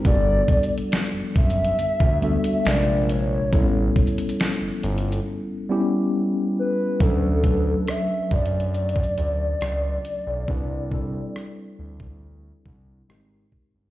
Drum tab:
HH |x-----------x---x---x---x-----------x---x---x---x-----------x-----x-----x-----------x-----------|x-----------x--x--x--x--x-----------x---x---x---------------------------------------------------|x-----------x-----------x-----------x---x---x---x---x---x---x-----------x-----------x-----------|------------------------------------------------------------------------------------------------|
SD |------------------------o-----------------------------------------------o-----------------------|------------------------o-----------------------------------------------------------------------|------------------------r-----------------------------------------------r-----------------------|------------------------r-----------------------------------------------r-----------------------|
BD |o-----------o-----------------------o-----------------o-----------------------------------------|o-----------o-----------------------------------------------------------------------------------|o-----------o-----------------------o-----------------o-----------------------------------------|o-----------o-----------------------------o-----------------o-----------------------o-----------|